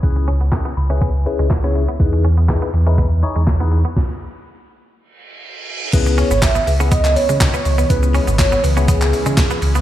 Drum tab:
CC |----------------|----------------|----------------|x---------------|
HH |x-x-x-x-x-x-x-x-|x-x-x-x-x-x-x-x-|----------------|x-o-x-o-x-o-x-o-|
SH |----------------|----------------|----------------|xxxxxxxxxxxxxxxx|
CP |----x-------x---|----x-------x---|----------------|----x----x--x---|
SD |----o-------o---|----o-------o---|o---------------|----o-------o---|
BD |o---o---o---o---|o---o---o---o---|o---------------|o---o---o---o---|

CC |----------------|
HH |x-o-x-o-x-o-x-o-|
SH |xxxxxxxxxxxxxxxx|
CP |----x----x--x---|
SD |----o-------o---|
BD |o---o---o---o---|